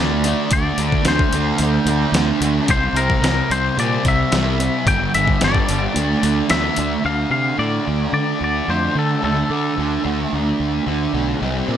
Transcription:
Already playing: D2 D3 D5
0.00 A3 D4
0.24 A3 D4, open hi-hat
0.51 D2 D3 A3 D4 D5, kick, open hi-hat
0.78 D2 A3 D4, open hi-hat
0.92 kick
1.05 D2 D3 A3 D4 C5, snare, open hi-hat
1.19 kick
1.33 D2 A3 D4, open hi-hat
1.58 D2 D3 A3, open hi-hat
1.63 D4
1.85 D2 D4, open hi-hat
1.90 A3
2.12 D2 D3 A3, snare, open hi-hat
2.16 D4
2.41 D2 A3 D4, open hi-hat
2.68 C2 C3 G3 C4 C5, kick, open hi-hat
2.93 C2 C4 A#4, open hi-hat
2.97 G3
3.10 kick
3.22 C2 C3 G3 C4, snare, open hi-hat
3.50 C2 G3 C4 C5, open hi-hat
3.77 A#2 C3 G3 C4 D5, open hi-hat
4.05 C2 G3 C4 E5, kick, open hi-hat
4.32 C2 C3 G3 C4, snare, open hi-hat
4.60 G3 C4, open hi-hat
4.86 G1 G2 D3 G3 G5, kick, open hi-hat
5.14 G1 D3 G3 E5, open hi-hat
5.28 kick
5.41 G1 G2 D3 G3 D5, snare, open hi-hat
5.55 kick
5.69 G1 D3 G3, open hi-hat
5.94 D2 D3 A3 D4, open hi-hat
6.23 D2 A3 D4, open hi-hat
6.49 D2 D3 A3 D4 E5, snare, open hi-hat
6.64 snare
6.77 D2 A3 D4, open hi-hat
7.04 D2 D3 A3 D4 F5
7.30 C3 A3 D4 F5
7.58 A2 D3 A3 D4 D5
7.85 D2 A3 D4
8.13 D3 D5
8.41 D2 D5
8.68 F2 D3 A3 D4 C5
8.95 D3 A3 D4 A4
9.22 D2 D3 A3 D4 A4
9.50 D3 A3 D4
9.77 D2 D3 A3 D4
10.04 D2 A3 D4
10.33 D2
10.60 D2
10.86 D2 D3 A3 D4
11.13 B1 A3 D4
11.40 C2 C3 G3 C4
11.67 A#2 G3 C4

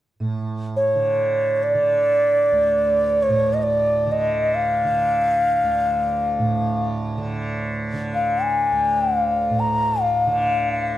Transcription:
0.20 A2
0.76 C#5
0.95 D3
1.63 D5
1.75 D3
2.52 D2
3.22 C#5
3.29 A2
3.54 D#5
3.63 D5
4.06 D3
4.12 D#5
4.55 F5
4.85 D3
5.63 D2
6.39 A2
7.18 D3
7.93 D3
8.14 F5
8.43 G#5
8.72 D2
9.01 G5
9.22 F5
9.50 A2
9.60 A#5
10.02 F5
10.27 D3

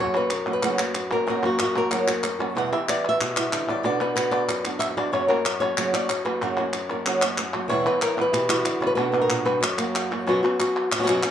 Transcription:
0.00 F#2 C#3 F#3 A#3 C#4 F#4 C#5
0.14 F#3 A#3 C#4 F#4 B4
0.30 A#4, muted nylon-string guitar stroke, clap
0.46 F#3 A#3 C#4 F#4, clap
0.53 B4
0.62 F#2 C#3 F#3 A#3 C#4 F#4, clap
0.79 F#3 A#3 C#4 F#4, clap
0.95 F#4, muted nylon-string guitar stroke, clap
1.11 F#3 A#3 C#4 F#4 A#4, clap
1.26 F#2 C#3 F#3 A#3 C#4 F#4 A#4
1.42 F#3 A#3 C#4 F#4
1.59 muted nylon-string guitar stroke, clap
1.63 F#4
1.75 F#3 A#3 C#4 F#4 A#4, clap
1.91 F#2 C#3 F#3 A#3 C#4 F#4, clap
2.07 F#3 A#3 C#4 F#4, clap
2.23 muted nylon-string guitar stroke, clap
2.39 F#3 A#3 C#4 F#4, clap
2.55 E2 B2 E3 G3 B3 E4 F#5
2.72 E3 G3 B3 E4 G4 E5
2.88 E3 G3 B3 E4 D5, clap
3.05 E5, clap
3.20 B2, muted nylon-string guitar stroke, clap
3.37 E3 G3 B3 E4, clap
3.53 D3, clap
3.67 C#3 E3 G3 B3 E4 D5, clap
3.83 B2 D3 B3 D4 F#4 D5
4.01 B3 D4 F#4 B4
4.16 D3 B3 D4 F#4 B4, clap
4.31 D5, clap
4.48 F#2, muted nylon-string guitar stroke, clap
4.64 B3 D4 F#4, clap
4.79 E5, clap
4.91 E5
4.97 B3 D4 F#4 D5, clap
5.12 F#2 C#3 F#3 A#3 C#4 F#4 C#5
5.28 F#3 A#3 C#4 F#4 A#4
5.45 F#4, muted nylon-string guitar stroke, clap
5.60 F#3 A#3 C#4 F#4 C#5, clap
5.77 F#2 C#3 F#3 A#3 C#4 F#4, clap
5.93 F#3 A#3 C#4 F#4 D5, clap
6.09 C#5, muted nylon-string guitar stroke, clap
6.25 F#3 A#3 C#4 F#4 B4, clap
6.41 F#2 C#3 F#3 A#3 C#4 F#4 A#4
6.57 F#3 A#3 C#4 F#4
6.73 muted nylon-string guitar stroke, clap
6.90 F#3 A#3 C#4 F#4 A#4, clap
7.06 F#2 C#3 F#3 A#3 C#4 F#4, clap
7.22 F#3 A#3 C#4 F#4, clap
7.38 muted nylon-string guitar stroke, clap
7.54 F#3 A#3 C#4 F#4, clap
7.68 E2 B2 E3 G3 B3 E4 C#5
7.84 E3 G3 B3 E4 B4
8.02 A#4, clap
8.17 E3 G3 B3 E4, clap
8.21 B4
8.33 B2 G4, muted nylon-string guitar stroke, clap
8.49 E3 G3 B3 E4 F#4, clap
8.64 D3 E4, clap
8.81 C#3 E3 G3 B3 E4, clap
8.87 B4
8.95 B2 D3 B3 D4 F#4 B4
9.12 D3 B3 D4 F#4
9.21 A#4
9.28 A#2, clap
9.45 G2 B3 D4 F#4 B4, clap
9.61 F#2 C#5, muted nylon-string guitar stroke, clap
9.77 F#3 A#3 C#4 F#4, clap
9.95 clap
10.11 F#3 A#3 C#4 F#4, clap
10.26 F#2 B2 F#3 B3 C#4 F#4
10.43 F#3 B3 C#4 F#4
10.59 F#3 B3 C#4 F#4, clap
10.76 clap
10.91 muted nylon-string guitar stroke, clap
10.95 B2 F#3 B3 C#4 F#4
10.99 F#3 B3 F#4
11.03 B2 B3 C#4 F#4
11.08 F#2 B2 F#3 B3 C#4 F#4, clap
11.23 F#3 B3 C#4 F#4, clap

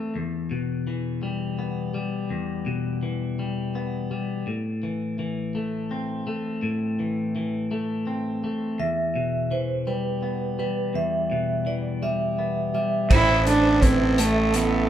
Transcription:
Already playing: E3 A3 C4
0.15 E2
0.51 B2
0.87 E3
1.23 G3
1.59 B3
1.94 G3
2.30 E2
2.66 B2
3.03 E3
3.39 G3
3.75 B3
4.11 G3
4.47 A2
4.83 E3
5.19 E3
5.55 A3
5.91 C4
6.27 A3
6.63 A2
7.00 E3
7.36 E3
7.71 A3
8.07 C4
8.44 A3
8.79 E2 E5
9.16 B2
9.51 E3 C5
9.87 G3 B4
10.22 B3
10.59 G3 B4
10.94 E2 E5
11.31 B2
11.66 E3 D5
12.02 G3 E5
12.39 B3
12.75 G3 E5
13.10 A1 A2 E4 A4 C5 E5 A5, kick, crash
13.46 A3 D4, closed hi-hat
13.82 C4 E4 B4, kick, closed hi-hat
14.18 A3 A4, closed hi-hat
14.54 E3 B3, closed hi-hat

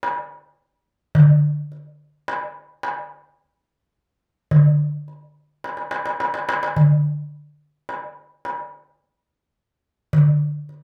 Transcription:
0.03 darbuka tek
1.15 darbuka dum
1.72 darbuka ka
2.28 darbuka tek
2.83 darbuka tek
4.51 darbuka dum
5.08 darbuka ka
5.64 darbuka tek
5.77 darbuka ka
5.91 darbuka tek
6.06 darbuka ka
6.20 darbuka tek
6.34 darbuka ka
6.49 darbuka tek
6.63 darbuka ka
6.76 darbuka dum
7.89 darbuka tek
8.45 darbuka tek
10.13 darbuka dum
10.69 darbuka ka

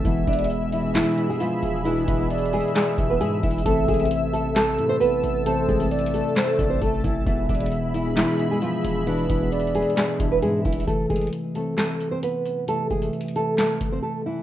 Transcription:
Already playing: E5
0.03 E1 B2 E3 G#3 B3 E4 G#4 E5 B5 E6, kick, closed hi-hat
0.27 E1 D4 D5, kick, closed hi-hat
0.33 closed hi-hat
0.37 B2 E3 G#3 B3, closed hi-hat
0.44 closed hi-hat
0.50 closed hi-hat
0.72 E3 E4, closed hi-hat
0.82 B2 E3 G#3 D4
0.95 E3 E4, snare, clap, closed hi-hat
1.16 B2 G#3 B3, closed hi-hat
1.30 G#3 G#4
1.40 F3 F4, closed hi-hat
1.63 E1, closed hi-hat
1.84 B2 E3 G#3 D4 E4 B4, closed hi-hat
2.08 E1 E3 E4, kick, closed hi-hat
2.17 B2 E3 G#3 B3
2.30 D5, closed hi-hat
2.38 closed hi-hat
2.46 closed hi-hat
2.53 G#3 G#4, closed hi-hat
2.61 closed hi-hat
2.68 closed hi-hat
2.76 G#3 G#4, snare, clap, closed hi-hat
2.97 E1 B2 E3 G#3 D4 E5, kick, closed hi-hat
3.10 B3 B4
3.21 G#2 G#3 G#4, closed hi-hat
3.43 E1 E3 E4, kick, closed hi-hat
3.51 closed hi-hat
3.58 closed hi-hat
3.64 A1 C3 E3 A3 C4 A4 E5 A5, kick, closed hi-hat
3.88 A1 G#3 G#4, kick, closed hi-hat
3.94 closed hi-hat
3.98 C3 E3 A3 C4, closed hi-hat
4.05 closed hi-hat
4.11 closed hi-hat
4.33 A3 A4, closed hi-hat
4.43 C3 E3 A3 C4
4.56 A3 A4, snare, clap, closed hi-hat
4.77 A2 C3 E3 A3 E4, closed hi-hat
4.89 C4 C5
5.00 A1 B3 B4, closed hi-hat
5.24 A1, closed hi-hat
5.44 C3 E3 A3 C4 A4 C5, closed hi-hat
5.68 A1 G#3 G#4, kick, closed hi-hat
5.78 C3 E3 A3 C4, closed hi-hat
5.91 D5, closed hi-hat
5.99 closed hi-hat
6.06 closed hi-hat
6.14 A3 A4, closed hi-hat
6.36 A3 A4 C5, snare, clap, closed hi-hat
6.57 A1 C3 E3 A3 C4 D5, kick, closed hi-hat
6.70 C4 C5
6.82 A1 A3 A4, kick, closed hi-hat
7.04 A1 E3 E4, kick, closed hi-hat
7.25 E1 B2 E3 G#3 B3 E4 G#4 E5 B5, kick, closed hi-hat
7.49 E1 D4 D5, kick, closed hi-hat
7.55 closed hi-hat
7.59 B2 E3 G#3 B3, closed hi-hat
7.66 closed hi-hat
7.72 closed hi-hat
7.94 E3 E4, closed hi-hat
8.04 B2 E3 G#3 D4
8.17 E3 E4, snare, clap, closed hi-hat
8.38 B2 G#3 B3, closed hi-hat
8.51 G#3 G#4
8.62 F3 F4, closed hi-hat
8.84 E1, closed hi-hat
9.06 B2 E3 G#3 D4 E4 B4, closed hi-hat
9.30 E1 E3 E4, kick, closed hi-hat
9.39 B2 E3 G#3 B3
9.52 D5, closed hi-hat
9.60 closed hi-hat
9.67 closed hi-hat
9.75 G#3 G#4, closed hi-hat
9.82 closed hi-hat
9.90 closed hi-hat
9.97 G#3 G#4, snare, clap, closed hi-hat
10.19 E1 B2 E3 G#3 D4 E5, kick, closed hi-hat
10.32 B3 B4
10.42 G#2 G#3 G#4, closed hi-hat
10.65 E1 E3 E4, kick, closed hi-hat
10.73 closed hi-hat
10.80 closed hi-hat
10.86 C3 E3 A3 A4, kick, closed hi-hat
11.10 G#3 G#4, kick, closed hi-hat
11.16 closed hi-hat
11.21 closed hi-hat
11.27 closed hi-hat
11.33 closed hi-hat
11.54 C3 E3 A3 C4 A4, closed hi-hat
11.77 A3 A4, snare, clap, closed hi-hat
12.00 closed hi-hat
12.11 C4 C5
12.23 B3 B4, closed hi-hat
12.45 closed hi-hat
12.66 C3 E3 A3 A4, closed hi-hat
12.91 G#3 G#4, kick, closed hi-hat
13.01 C3 E3 A3, closed hi-hat
13.13 closed hi-hat
13.21 closed hi-hat
13.28 closed hi-hat
13.35 C3 E3 A3 A4, closed hi-hat
13.58 A3 A4, snare, clap, closed hi-hat
13.81 kick, closed hi-hat
13.92 C4 C5
14.03 A3 A4
14.26 E3 E4

